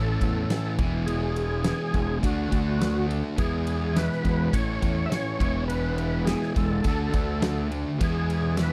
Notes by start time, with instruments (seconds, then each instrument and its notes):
Already playing: fingered electric bass A1, distorted electric guitar A2 E3 A3 C#4 E4, overdriven electric guitar A2, tonewheel organ A4
0.21 fingered electric bass E2, overdriven electric guitar A3, kick, ride
0.50 overdriven electric guitar E3, snare, ride
0.78 fingered electric bass E1, distorted electric guitar E3 G#3 B3, overdriven electric guitar E3, kick, ride
0.83 distorted electric guitar E4
1.06 overdriven electric guitar E3, tonewheel organ G#4, ride
1.36 ride
1.64 overdriven electric guitar E3, snare, ride
1.94 fingered electric bass E1, overdriven electric guitar G#3, kick, ride
2.22 fingered electric bass D2, overdriven electric guitar D3, distorted electric guitar D3 A3 D4, tonewheel organ F#4, kick, ride
2.26 distorted electric guitar F#4
2.51 fingered electric bass D2, overdriven electric guitar A3, kick, ride
2.80 overdriven electric guitar D3, snare, ride
3.08 overdriven electric guitar A3, ride
3.37 fingered electric bass E2, distorted electric guitar E3 G#3 B3 E4, overdriven electric guitar E3, tonewheel organ G#4, kick, ride
3.67 ride
3.94 overdriven electric guitar E3, tonewheel organ B4, snare, ride
4.12 snare
4.23 fingered electric bass E2, overdriven electric guitar G#3, kick, ride
4.52 fingered electric bass A1, distorted electric guitar A2 E3 A3 C#4 E4, overdriven electric guitar A2, tonewheel organ C#5, kick, ride
4.82 fingered electric bass E2, overdriven electric guitar A3, kick, ride
5.06 tonewheel organ C#5 E5
5.10 overdriven electric guitar E3, snare, ride
5.39 fingered electric bass E1, overdriven electric guitar E3, distorted electric guitar E3 G#3 B3, kick, ride
5.43 distorted electric guitar E4
5.68 overdriven electric guitar E3, tonewheel organ B4, ride
5.97 tonewheel organ B4, ride
6.25 overdriven electric guitar E3, tonewheel organ G#4, snare, ride
6.42 snare
6.56 fingered electric bass E1, overdriven electric guitar G#3, tonewheel organ A4, kick, ride
6.84 fingered electric bass D2, overdriven electric guitar D3, distorted electric guitar D3 A3 D4 F#4, kick, ride
7.13 fingered electric bass D2, overdriven electric guitar A3, kick, ride
7.42 overdriven electric guitar D3, snare, ride
7.71 overdriven electric guitar A3, ride
7.99 fingered electric bass E2, distorted electric guitar E3 G#3 B3 E4, overdriven electric guitar E3, kick, ride
8.04 tonewheel organ G#4
8.30 ride
8.57 overdriven electric guitar E3, snare, ride
8.62 tonewheel organ B4